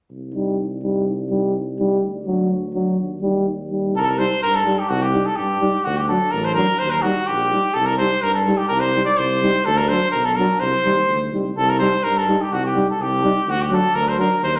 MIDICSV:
0, 0, Header, 1, 5, 480
1, 0, Start_track
1, 0, Tempo, 477327
1, 96, Time_signature, 2, 2, 24, 8
1, 14677, End_track
2, 0, Start_track
2, 0, Title_t, "Trumpet"
2, 0, Program_c, 0, 56
2, 3980, Note_on_c, 0, 69, 72
2, 4000, Note_on_c, 0, 70, 64
2, 4015, Note_off_c, 0, 69, 0
2, 4033, Note_on_c, 0, 69, 77
2, 4048, Note_off_c, 0, 70, 0
2, 4091, Note_on_c, 0, 70, 73
2, 4107, Note_off_c, 0, 69, 0
2, 4208, Note_on_c, 0, 72, 82
2, 4223, Note_off_c, 0, 70, 0
2, 4444, Note_off_c, 0, 72, 0
2, 4451, Note_on_c, 0, 70, 91
2, 4574, Note_on_c, 0, 69, 75
2, 4589, Note_off_c, 0, 70, 0
2, 4816, Note_on_c, 0, 67, 66
2, 4831, Note_off_c, 0, 69, 0
2, 4916, Note_on_c, 0, 66, 73
2, 4931, Note_off_c, 0, 67, 0
2, 5051, Note_on_c, 0, 67, 68
2, 5066, Note_off_c, 0, 66, 0
2, 5286, Note_on_c, 0, 69, 66
2, 5301, Note_off_c, 0, 67, 0
2, 5391, Note_on_c, 0, 67, 73
2, 5406, Note_off_c, 0, 69, 0
2, 5872, Note_on_c, 0, 66, 89
2, 5887, Note_off_c, 0, 67, 0
2, 6004, Note_on_c, 0, 67, 54
2, 6019, Note_off_c, 0, 66, 0
2, 6113, Note_off_c, 0, 67, 0
2, 6119, Note_on_c, 0, 69, 78
2, 6343, Note_on_c, 0, 70, 87
2, 6358, Note_off_c, 0, 69, 0
2, 6484, Note_on_c, 0, 72, 73
2, 6499, Note_off_c, 0, 70, 0
2, 6576, Note_off_c, 0, 72, 0
2, 6582, Note_on_c, 0, 70, 79
2, 6824, Note_on_c, 0, 72, 86
2, 6839, Note_off_c, 0, 70, 0
2, 6943, Note_on_c, 0, 70, 71
2, 6958, Note_off_c, 0, 72, 0
2, 7061, Note_on_c, 0, 66, 72
2, 7076, Note_off_c, 0, 70, 0
2, 7307, Note_on_c, 0, 67, 85
2, 7323, Note_off_c, 0, 66, 0
2, 7782, Note_on_c, 0, 69, 78
2, 7797, Note_off_c, 0, 67, 0
2, 7904, Note_on_c, 0, 70, 73
2, 7919, Note_off_c, 0, 69, 0
2, 8018, Note_off_c, 0, 70, 0
2, 8024, Note_on_c, 0, 72, 85
2, 8265, Note_on_c, 0, 70, 89
2, 8281, Note_off_c, 0, 72, 0
2, 8380, Note_off_c, 0, 70, 0
2, 8386, Note_on_c, 0, 69, 67
2, 8625, Note_on_c, 0, 67, 74
2, 8640, Note_off_c, 0, 69, 0
2, 8723, Note_off_c, 0, 67, 0
2, 8730, Note_on_c, 0, 70, 87
2, 8853, Note_on_c, 0, 72, 79
2, 8868, Note_off_c, 0, 70, 0
2, 9099, Note_off_c, 0, 72, 0
2, 9105, Note_on_c, 0, 74, 79
2, 9228, Note_on_c, 0, 72, 89
2, 9244, Note_off_c, 0, 74, 0
2, 9707, Note_on_c, 0, 69, 95
2, 9723, Note_off_c, 0, 72, 0
2, 9827, Note_on_c, 0, 70, 77
2, 9842, Note_off_c, 0, 69, 0
2, 9941, Note_on_c, 0, 72, 80
2, 9957, Note_off_c, 0, 70, 0
2, 10165, Note_off_c, 0, 72, 0
2, 10171, Note_on_c, 0, 70, 79
2, 10304, Note_on_c, 0, 69, 75
2, 10319, Note_off_c, 0, 70, 0
2, 10414, Note_on_c, 0, 70, 78
2, 10430, Note_off_c, 0, 69, 0
2, 10658, Note_on_c, 0, 72, 89
2, 10673, Note_off_c, 0, 70, 0
2, 11385, Note_off_c, 0, 72, 0
2, 11630, Note_on_c, 0, 69, 83
2, 11758, Note_on_c, 0, 70, 71
2, 11773, Note_off_c, 0, 69, 0
2, 11849, Note_off_c, 0, 70, 0
2, 11855, Note_on_c, 0, 72, 81
2, 12101, Note_on_c, 0, 70, 85
2, 12116, Note_off_c, 0, 72, 0
2, 12244, Note_on_c, 0, 69, 67
2, 12259, Note_off_c, 0, 70, 0
2, 12482, Note_on_c, 0, 67, 71
2, 12497, Note_off_c, 0, 69, 0
2, 12594, Note_on_c, 0, 66, 88
2, 12609, Note_off_c, 0, 67, 0
2, 12719, Note_off_c, 0, 66, 0
2, 12728, Note_on_c, 0, 67, 65
2, 12945, Note_off_c, 0, 67, 0
2, 12977, Note_on_c, 0, 69, 64
2, 13092, Note_on_c, 0, 67, 88
2, 13107, Note_off_c, 0, 69, 0
2, 13572, Note_on_c, 0, 66, 95
2, 13587, Note_off_c, 0, 67, 0
2, 13690, Note_on_c, 0, 67, 63
2, 13706, Note_off_c, 0, 66, 0
2, 13793, Note_off_c, 0, 67, 0
2, 13811, Note_on_c, 0, 69, 85
2, 14026, Note_on_c, 0, 70, 101
2, 14041, Note_off_c, 0, 69, 0
2, 14164, Note_on_c, 0, 72, 70
2, 14179, Note_off_c, 0, 70, 0
2, 14268, Note_off_c, 0, 72, 0
2, 14276, Note_on_c, 0, 70, 80
2, 14491, Note_off_c, 0, 70, 0
2, 14516, Note_on_c, 0, 72, 87
2, 14643, Note_on_c, 0, 70, 74
2, 14658, Note_off_c, 0, 72, 0
2, 14677, Note_off_c, 0, 70, 0
2, 14677, End_track
3, 0, Start_track
3, 0, Title_t, "Euphonium"
3, 0, Program_c, 1, 58
3, 345, Note_on_c, 1, 63, 43
3, 578, Note_off_c, 1, 63, 0
3, 828, Note_on_c, 1, 63, 43
3, 1062, Note_off_c, 1, 63, 0
3, 1321, Note_on_c, 1, 63, 46
3, 1550, Note_off_c, 1, 63, 0
3, 1793, Note_on_c, 1, 63, 46
3, 2027, Note_off_c, 1, 63, 0
3, 2279, Note_on_c, 1, 62, 45
3, 2512, Note_off_c, 1, 62, 0
3, 2752, Note_on_c, 1, 62, 49
3, 2989, Note_off_c, 1, 62, 0
3, 3250, Note_on_c, 1, 63, 48
3, 3479, Note_off_c, 1, 63, 0
3, 3720, Note_on_c, 1, 63, 41
3, 3954, Note_off_c, 1, 63, 0
3, 4208, Note_on_c, 1, 63, 40
3, 4302, Note_off_c, 1, 63, 0
3, 4676, Note_on_c, 1, 63, 47
3, 4773, Note_off_c, 1, 63, 0
3, 5162, Note_on_c, 1, 63, 56
3, 5258, Note_off_c, 1, 63, 0
3, 5644, Note_on_c, 1, 63, 55
3, 5739, Note_off_c, 1, 63, 0
3, 6120, Note_on_c, 1, 62, 51
3, 6216, Note_off_c, 1, 62, 0
3, 6600, Note_on_c, 1, 62, 55
3, 6696, Note_off_c, 1, 62, 0
3, 7072, Note_on_c, 1, 63, 52
3, 7169, Note_off_c, 1, 63, 0
3, 7559, Note_on_c, 1, 63, 46
3, 7655, Note_off_c, 1, 63, 0
3, 8047, Note_on_c, 1, 63, 48
3, 8141, Note_off_c, 1, 63, 0
3, 8517, Note_on_c, 1, 63, 55
3, 8613, Note_off_c, 1, 63, 0
3, 8997, Note_on_c, 1, 63, 46
3, 9093, Note_off_c, 1, 63, 0
3, 9480, Note_on_c, 1, 63, 65
3, 9576, Note_off_c, 1, 63, 0
3, 9950, Note_on_c, 1, 62, 53
3, 10047, Note_off_c, 1, 62, 0
3, 10437, Note_on_c, 1, 62, 54
3, 10533, Note_off_c, 1, 62, 0
3, 10904, Note_on_c, 1, 63, 45
3, 11002, Note_off_c, 1, 63, 0
3, 11392, Note_on_c, 1, 63, 47
3, 11488, Note_off_c, 1, 63, 0
3, 11863, Note_on_c, 1, 63, 52
3, 11961, Note_off_c, 1, 63, 0
3, 12351, Note_on_c, 1, 63, 65
3, 12447, Note_off_c, 1, 63, 0
3, 12830, Note_on_c, 1, 63, 53
3, 12925, Note_off_c, 1, 63, 0
3, 13313, Note_on_c, 1, 63, 65
3, 13407, Note_off_c, 1, 63, 0
3, 13782, Note_on_c, 1, 62, 59
3, 13878, Note_off_c, 1, 62, 0
3, 14262, Note_on_c, 1, 62, 63
3, 14357, Note_off_c, 1, 62, 0
3, 14677, End_track
4, 0, Start_track
4, 0, Title_t, "Euphonium"
4, 0, Program_c, 2, 58
4, 347, Note_on_c, 2, 55, 42
4, 579, Note_off_c, 2, 55, 0
4, 835, Note_on_c, 2, 55, 49
4, 1065, Note_off_c, 2, 55, 0
4, 1306, Note_on_c, 2, 55, 56
4, 1542, Note_off_c, 2, 55, 0
4, 1799, Note_on_c, 2, 55, 62
4, 2030, Note_off_c, 2, 55, 0
4, 2281, Note_on_c, 2, 54, 57
4, 2513, Note_off_c, 2, 54, 0
4, 2760, Note_on_c, 2, 54, 53
4, 2993, Note_off_c, 2, 54, 0
4, 3239, Note_on_c, 2, 55, 53
4, 3473, Note_off_c, 2, 55, 0
4, 3724, Note_on_c, 2, 55, 45
4, 3957, Note_off_c, 2, 55, 0
4, 4197, Note_on_c, 2, 55, 60
4, 4294, Note_off_c, 2, 55, 0
4, 4680, Note_on_c, 2, 55, 63
4, 4776, Note_off_c, 2, 55, 0
4, 5160, Note_on_c, 2, 55, 57
4, 5256, Note_off_c, 2, 55, 0
4, 5631, Note_on_c, 2, 55, 72
4, 5729, Note_off_c, 2, 55, 0
4, 6123, Note_on_c, 2, 54, 59
4, 6218, Note_off_c, 2, 54, 0
4, 6596, Note_on_c, 2, 54, 61
4, 6693, Note_off_c, 2, 54, 0
4, 7075, Note_on_c, 2, 55, 57
4, 7172, Note_off_c, 2, 55, 0
4, 7559, Note_on_c, 2, 55, 50
4, 7655, Note_off_c, 2, 55, 0
4, 8037, Note_on_c, 2, 55, 54
4, 8133, Note_off_c, 2, 55, 0
4, 8519, Note_on_c, 2, 55, 63
4, 8615, Note_off_c, 2, 55, 0
4, 8999, Note_on_c, 2, 55, 58
4, 9094, Note_off_c, 2, 55, 0
4, 9480, Note_on_c, 2, 55, 69
4, 9576, Note_off_c, 2, 55, 0
4, 9954, Note_on_c, 2, 54, 59
4, 10051, Note_off_c, 2, 54, 0
4, 10436, Note_on_c, 2, 54, 70
4, 10532, Note_off_c, 2, 54, 0
4, 10911, Note_on_c, 2, 55, 58
4, 11008, Note_off_c, 2, 55, 0
4, 11396, Note_on_c, 2, 55, 52
4, 11491, Note_off_c, 2, 55, 0
4, 11866, Note_on_c, 2, 55, 64
4, 11963, Note_off_c, 2, 55, 0
4, 12335, Note_on_c, 2, 55, 68
4, 12434, Note_off_c, 2, 55, 0
4, 12821, Note_on_c, 2, 55, 64
4, 12918, Note_off_c, 2, 55, 0
4, 13295, Note_on_c, 2, 55, 67
4, 13393, Note_off_c, 2, 55, 0
4, 13778, Note_on_c, 2, 54, 74
4, 13874, Note_off_c, 2, 54, 0
4, 14252, Note_on_c, 2, 54, 64
4, 14349, Note_off_c, 2, 54, 0
4, 14677, End_track
5, 0, Start_track
5, 0, Title_t, "Tuba"
5, 0, Program_c, 3, 58
5, 111, Note_on_c, 3, 36, 65
5, 1999, Note_off_c, 3, 36, 0
5, 2033, Note_on_c, 3, 38, 60
5, 2977, Note_off_c, 3, 38, 0
5, 3012, Note_on_c, 3, 39, 66
5, 3948, Note_off_c, 3, 39, 0
5, 3959, Note_on_c, 3, 36, 86
5, 4223, Note_off_c, 3, 36, 0
5, 4451, Note_on_c, 3, 43, 83
5, 4712, Note_off_c, 3, 43, 0
5, 4927, Note_on_c, 3, 36, 106
5, 5189, Note_off_c, 3, 36, 0
5, 5417, Note_on_c, 3, 43, 78
5, 5676, Note_off_c, 3, 43, 0
5, 5892, Note_on_c, 3, 38, 93
5, 6153, Note_off_c, 3, 38, 0
5, 6368, Note_on_c, 3, 33, 90
5, 6630, Note_off_c, 3, 33, 0
5, 6844, Note_on_c, 3, 39, 91
5, 7106, Note_off_c, 3, 39, 0
5, 7326, Note_on_c, 3, 34, 81
5, 7588, Note_off_c, 3, 34, 0
5, 7801, Note_on_c, 3, 36, 91
5, 8064, Note_off_c, 3, 36, 0
5, 8277, Note_on_c, 3, 43, 84
5, 8541, Note_off_c, 3, 43, 0
5, 8759, Note_on_c, 3, 36, 97
5, 9023, Note_off_c, 3, 36, 0
5, 9236, Note_on_c, 3, 36, 90
5, 9500, Note_off_c, 3, 36, 0
5, 9721, Note_on_c, 3, 38, 108
5, 9984, Note_off_c, 3, 38, 0
5, 10195, Note_on_c, 3, 35, 89
5, 10459, Note_off_c, 3, 35, 0
5, 10675, Note_on_c, 3, 36, 107
5, 10807, Note_off_c, 3, 36, 0
5, 10917, Note_on_c, 3, 39, 74
5, 11132, Note_off_c, 3, 39, 0
5, 11151, Note_on_c, 3, 38, 85
5, 11368, Note_off_c, 3, 38, 0
5, 11392, Note_on_c, 3, 36, 65
5, 11609, Note_off_c, 3, 36, 0
5, 11624, Note_on_c, 3, 36, 100
5, 11890, Note_off_c, 3, 36, 0
5, 12121, Note_on_c, 3, 43, 85
5, 12381, Note_off_c, 3, 43, 0
5, 12586, Note_on_c, 3, 36, 89
5, 12850, Note_off_c, 3, 36, 0
5, 13064, Note_on_c, 3, 36, 90
5, 13328, Note_off_c, 3, 36, 0
5, 13542, Note_on_c, 3, 38, 98
5, 13805, Note_off_c, 3, 38, 0
5, 14019, Note_on_c, 3, 38, 105
5, 14282, Note_off_c, 3, 38, 0
5, 14501, Note_on_c, 3, 39, 108
5, 14677, Note_off_c, 3, 39, 0
5, 14677, End_track
0, 0, End_of_file